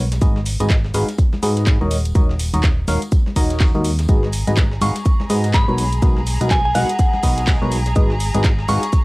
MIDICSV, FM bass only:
0, 0, Header, 1, 2, 480
1, 0, Start_track
1, 0, Key_signature, 5, "minor"
1, 0, Tempo, 483871
1, 216, Time_signature, 4, 2, 24, 8
1, 8972, End_track
2, 0, Start_track
2, 0, Title_t, "FM bass"
2, 0, Program_c, 0, 39
2, 0, Note_on_c, 0, 35, 95
2, 196, Note_off_c, 0, 35, 0
2, 215, Note_on_c, 0, 32, 92
2, 569, Note_off_c, 0, 32, 0
2, 597, Note_on_c, 0, 32, 99
2, 916, Note_off_c, 0, 32, 0
2, 934, Note_on_c, 0, 32, 91
2, 1033, Note_off_c, 0, 32, 0
2, 1415, Note_on_c, 0, 44, 96
2, 1769, Note_off_c, 0, 44, 0
2, 1797, Note_on_c, 0, 27, 97
2, 2116, Note_off_c, 0, 27, 0
2, 2136, Note_on_c, 0, 27, 97
2, 2489, Note_off_c, 0, 27, 0
2, 2517, Note_on_c, 0, 27, 97
2, 2836, Note_off_c, 0, 27, 0
2, 2856, Note_on_c, 0, 27, 97
2, 2954, Note_off_c, 0, 27, 0
2, 3336, Note_on_c, 0, 27, 94
2, 3689, Note_off_c, 0, 27, 0
2, 3717, Note_on_c, 0, 39, 98
2, 4036, Note_off_c, 0, 39, 0
2, 4056, Note_on_c, 0, 32, 95
2, 4409, Note_off_c, 0, 32, 0
2, 4438, Note_on_c, 0, 32, 95
2, 4757, Note_off_c, 0, 32, 0
2, 4776, Note_on_c, 0, 32, 96
2, 4874, Note_off_c, 0, 32, 0
2, 5257, Note_on_c, 0, 44, 92
2, 5610, Note_off_c, 0, 44, 0
2, 5637, Note_on_c, 0, 35, 96
2, 5956, Note_off_c, 0, 35, 0
2, 5977, Note_on_c, 0, 35, 95
2, 6329, Note_off_c, 0, 35, 0
2, 6358, Note_on_c, 0, 35, 97
2, 6676, Note_off_c, 0, 35, 0
2, 6696, Note_on_c, 0, 35, 97
2, 6794, Note_off_c, 0, 35, 0
2, 7176, Note_on_c, 0, 35, 92
2, 7529, Note_off_c, 0, 35, 0
2, 7557, Note_on_c, 0, 35, 96
2, 7876, Note_off_c, 0, 35, 0
2, 7897, Note_on_c, 0, 32, 98
2, 8249, Note_off_c, 0, 32, 0
2, 8277, Note_on_c, 0, 32, 103
2, 8596, Note_off_c, 0, 32, 0
2, 8616, Note_on_c, 0, 32, 96
2, 8713, Note_off_c, 0, 32, 0
2, 8972, End_track
0, 0, End_of_file